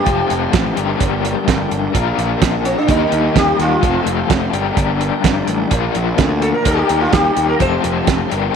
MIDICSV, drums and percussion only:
0, 0, Header, 1, 2, 480
1, 0, Start_track
1, 0, Tempo, 470958
1, 68, Time_signature, 4, 2, 24, 8
1, 8720, End_track
2, 0, Start_track
2, 0, Title_t, "Drums"
2, 64, Note_on_c, 9, 42, 75
2, 67, Note_on_c, 9, 36, 95
2, 166, Note_off_c, 9, 42, 0
2, 169, Note_off_c, 9, 36, 0
2, 307, Note_on_c, 9, 42, 71
2, 409, Note_off_c, 9, 42, 0
2, 542, Note_on_c, 9, 42, 97
2, 545, Note_on_c, 9, 36, 114
2, 550, Note_on_c, 9, 38, 107
2, 644, Note_off_c, 9, 42, 0
2, 647, Note_off_c, 9, 36, 0
2, 651, Note_off_c, 9, 38, 0
2, 784, Note_on_c, 9, 42, 69
2, 886, Note_off_c, 9, 42, 0
2, 1024, Note_on_c, 9, 42, 92
2, 1026, Note_on_c, 9, 36, 103
2, 1126, Note_off_c, 9, 42, 0
2, 1128, Note_off_c, 9, 36, 0
2, 1273, Note_on_c, 9, 42, 75
2, 1374, Note_off_c, 9, 42, 0
2, 1506, Note_on_c, 9, 36, 105
2, 1509, Note_on_c, 9, 42, 91
2, 1516, Note_on_c, 9, 38, 109
2, 1608, Note_off_c, 9, 36, 0
2, 1611, Note_off_c, 9, 42, 0
2, 1618, Note_off_c, 9, 38, 0
2, 1747, Note_on_c, 9, 42, 65
2, 1849, Note_off_c, 9, 42, 0
2, 1984, Note_on_c, 9, 36, 99
2, 1986, Note_on_c, 9, 42, 85
2, 2086, Note_off_c, 9, 36, 0
2, 2088, Note_off_c, 9, 42, 0
2, 2229, Note_on_c, 9, 42, 74
2, 2331, Note_off_c, 9, 42, 0
2, 2463, Note_on_c, 9, 42, 97
2, 2464, Note_on_c, 9, 36, 115
2, 2470, Note_on_c, 9, 38, 112
2, 2565, Note_off_c, 9, 42, 0
2, 2566, Note_off_c, 9, 36, 0
2, 2572, Note_off_c, 9, 38, 0
2, 2704, Note_on_c, 9, 42, 69
2, 2806, Note_off_c, 9, 42, 0
2, 2939, Note_on_c, 9, 42, 89
2, 2942, Note_on_c, 9, 36, 110
2, 3041, Note_off_c, 9, 42, 0
2, 3044, Note_off_c, 9, 36, 0
2, 3180, Note_on_c, 9, 42, 64
2, 3282, Note_off_c, 9, 42, 0
2, 3422, Note_on_c, 9, 36, 107
2, 3423, Note_on_c, 9, 42, 87
2, 3430, Note_on_c, 9, 38, 107
2, 3524, Note_off_c, 9, 36, 0
2, 3525, Note_off_c, 9, 42, 0
2, 3532, Note_off_c, 9, 38, 0
2, 3665, Note_on_c, 9, 42, 59
2, 3672, Note_on_c, 9, 38, 31
2, 3767, Note_off_c, 9, 42, 0
2, 3774, Note_off_c, 9, 38, 0
2, 3902, Note_on_c, 9, 36, 108
2, 3904, Note_on_c, 9, 42, 79
2, 4004, Note_off_c, 9, 36, 0
2, 4006, Note_off_c, 9, 42, 0
2, 4144, Note_on_c, 9, 42, 66
2, 4246, Note_off_c, 9, 42, 0
2, 4382, Note_on_c, 9, 36, 116
2, 4383, Note_on_c, 9, 42, 94
2, 4391, Note_on_c, 9, 38, 110
2, 4484, Note_off_c, 9, 36, 0
2, 4485, Note_off_c, 9, 42, 0
2, 4492, Note_off_c, 9, 38, 0
2, 4622, Note_on_c, 9, 42, 71
2, 4724, Note_off_c, 9, 42, 0
2, 4861, Note_on_c, 9, 36, 108
2, 4862, Note_on_c, 9, 42, 87
2, 4963, Note_off_c, 9, 36, 0
2, 4964, Note_off_c, 9, 42, 0
2, 5104, Note_on_c, 9, 42, 74
2, 5206, Note_off_c, 9, 42, 0
2, 5343, Note_on_c, 9, 36, 112
2, 5343, Note_on_c, 9, 42, 96
2, 5350, Note_on_c, 9, 38, 112
2, 5445, Note_off_c, 9, 36, 0
2, 5445, Note_off_c, 9, 42, 0
2, 5452, Note_off_c, 9, 38, 0
2, 5580, Note_on_c, 9, 42, 71
2, 5682, Note_off_c, 9, 42, 0
2, 5819, Note_on_c, 9, 42, 96
2, 5823, Note_on_c, 9, 36, 97
2, 5921, Note_off_c, 9, 42, 0
2, 5925, Note_off_c, 9, 36, 0
2, 6062, Note_on_c, 9, 42, 73
2, 6164, Note_off_c, 9, 42, 0
2, 6299, Note_on_c, 9, 42, 94
2, 6304, Note_on_c, 9, 36, 112
2, 6306, Note_on_c, 9, 38, 106
2, 6401, Note_off_c, 9, 42, 0
2, 6406, Note_off_c, 9, 36, 0
2, 6408, Note_off_c, 9, 38, 0
2, 6544, Note_on_c, 9, 42, 73
2, 6646, Note_off_c, 9, 42, 0
2, 6781, Note_on_c, 9, 42, 93
2, 6785, Note_on_c, 9, 36, 99
2, 6883, Note_off_c, 9, 42, 0
2, 6887, Note_off_c, 9, 36, 0
2, 7025, Note_on_c, 9, 42, 68
2, 7127, Note_off_c, 9, 42, 0
2, 7263, Note_on_c, 9, 42, 88
2, 7267, Note_on_c, 9, 36, 114
2, 7270, Note_on_c, 9, 38, 112
2, 7365, Note_off_c, 9, 42, 0
2, 7369, Note_off_c, 9, 36, 0
2, 7372, Note_off_c, 9, 38, 0
2, 7507, Note_on_c, 9, 42, 68
2, 7609, Note_off_c, 9, 42, 0
2, 7748, Note_on_c, 9, 42, 84
2, 7750, Note_on_c, 9, 36, 92
2, 7849, Note_off_c, 9, 42, 0
2, 7852, Note_off_c, 9, 36, 0
2, 7991, Note_on_c, 9, 42, 69
2, 8092, Note_off_c, 9, 42, 0
2, 8229, Note_on_c, 9, 42, 94
2, 8230, Note_on_c, 9, 36, 114
2, 8236, Note_on_c, 9, 38, 115
2, 8330, Note_off_c, 9, 42, 0
2, 8332, Note_off_c, 9, 36, 0
2, 8338, Note_off_c, 9, 38, 0
2, 8475, Note_on_c, 9, 42, 67
2, 8576, Note_off_c, 9, 42, 0
2, 8720, End_track
0, 0, End_of_file